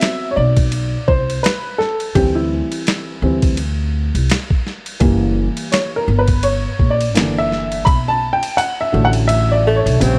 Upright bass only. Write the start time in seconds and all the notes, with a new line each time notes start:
0.37 B1
1.08 C2
2.15 D2
3.22 D2
4.15 C2
5.01 F#1
6.08 G1
6.80 A#1
7.15 F#1
7.87 B1
8.94 A1
9.86 B1
10.01 A#1